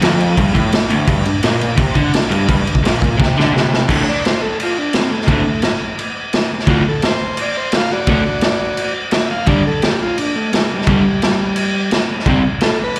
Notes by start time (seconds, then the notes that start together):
0.01 F2, snare, crash
0.20 crash
0.37 G2, kick, crash
0.54 A2, kick, crash
0.72 snare, crash
0.90 D2, crash
1.07 G2, kick, crash
1.25 G2, crash
1.43 A#2, snare, crash
1.61 crash
1.77 C3, kick, crash
1.95 D3, kick, crash
2.14 snare, crash
2.30 G2, crash
2.49 G2, kick, crash
2.65 G2, crash
2.75 kick
2.83 A#2, snare, crash
3.02 kick, crash
3.18 C3, kick
3.22 snare
3.37 D3, snare
3.53 C3, snare
3.74 snare
3.88 D2 A2 D3, kick, crash
4.04 C#5
4.09 D5
4.25 C5, snare, crash
4.42 A4
4.60 F4, crash
4.78 D4
4.93 C4, snare, crash
5.10 A3
5.21 snare
5.27 D2 A2 D3 G#3 A3, kick, crash
5.62 snare, crash
5.99 crash
6.33 snare, crash
6.59 snare
6.67 D2 A2 D3 F4, kick, crash
6.89 A4
7.02 snare, crash
7.06 C5
7.37 crash
7.41 D5
7.57 C5
7.72 snare, crash
7.76 F5
7.92 F#4 D5
8.07 D2 A2 D3, kick, crash
8.41 snare, crash
8.77 crash
9.11 snare, crash
9.26 E5
9.31 F5
9.46 G2 D3 G3 D5, kick, crash
9.67 A4
9.82 G4, snare, crash
10.02 F4
10.18 D4, crash
10.36 A3
10.53 G#3, snare, crash
10.75 G3
10.81 snare
10.87 G2 D3 F#3 G3, kick, crash
10.91 G3
11.22 snare, crash
11.56 crash
11.91 snare, crash
12.19 snare
12.26 C3 G3 C4, kick, crash
12.61 A4, snare, crash
12.84 B4
12.96 crash